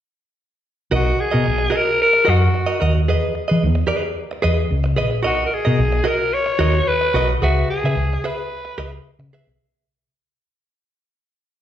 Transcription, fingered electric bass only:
0.92 1.11 B1 loud
1.34 1.43 B2 medium
1.47 1.66 B1 medium
2.28 2.47 F#2 medium
2.82 3.08 D#2 medium
3.08 3.28 E2 medium
3.51 3.65 E3 medium
3.63 3.83 E2 loud
4.44 4.64 E2 medium
4.71 4.98 C#2 medium
4.98 5.25 A#1 medium
5.25 5.45 B1 loud
5.67 5.76 B2 medium
5.79 5.99 B1 loud
6.59 6.80 D#2 medium
7.14 7.34 B1 medium
7.42 7.62 C#2 medium
7.84 7.93 C#3 medium
7.96 8.16 C#2 medium
8.78 8.98 C#2 medium
9.19 9.28 C#3 loud
9.47 9.56 B1 medium

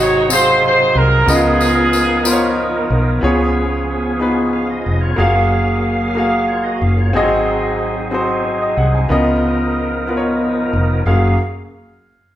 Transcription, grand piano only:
0.00 0.27 G#2 medium
0.00 0.25 C4 medium
0.00 0.25 F#4 medium
0.00 0.26 G#4 medium
0.00 0.26 D#5 medium
0.29 1.22 C4 medium
0.29 1.23 F#4 medium
0.29 1.24 G#4 medium
0.29 1.24 F5 medium
1.26 2.21 C#3 medium
1.26 2.20 B3 medium
1.26 2.20 F4 medium
1.26 2.21 A#4 medium
1.26 2.21 D#5 medium
2.23 3.17 B3 medium
2.23 3.18 F4 medium
2.23 3.18 A#4 medium
2.23 2.32 C5 medium
2.33 3.22 C#5 medium
3.21 4.17 C#3 medium
3.21 4.15 B3 medium
3.21 4.15 F4 medium
3.21 4.16 G#4 medium
3.21 4.16 C#5 medium
4.19 5.13 B3 medium
4.19 4.27 D#4 soft
4.19 5.14 G#4 medium
4.19 5.14 B4 medium
4.27 5.16 F4 medium
5.16 6.10 A#3 medium
5.16 6.11 F#4 medium
5.16 6.11 G#4 medium
5.16 6.12 F5 medium
6.15 7.08 A#3 medium
6.15 7.09 F#4 medium
6.15 7.10 G#4 medium
6.15 7.10 F5 medium
7.13 8.08 G#2 medium
7.13 8.07 C4 medium
7.13 8.07 F#4 medium
7.13 8.08 G#4 medium
7.13 8.08 D#5 medium
8.11 9.05 C4 medium
8.11 9.05 F#4 medium
8.11 9.06 G#4 medium
8.11 8.44 C5 medium
8.45 8.60 C5 soft
8.62 8.77 D#5 medium
8.78 8.93 F#5 medium
8.95 9.25 G#5 medium
9.09 10.04 C#3 medium
9.09 10.03 B3 medium
9.09 10.03 F4 medium
9.09 10.04 A#4 medium
9.09 10.04 D#5 medium
10.07 11.01 B3 medium
10.07 11.01 F4 medium
10.07 11.02 A#4 medium
10.07 10.16 B4 medium
10.17 11.06 C#5 medium
11.07 11.37 F#2 medium
11.07 11.37 A#3 medium
11.07 11.37 F#4 medium
11.07 11.37 G#4 medium
11.07 11.37 F5 medium

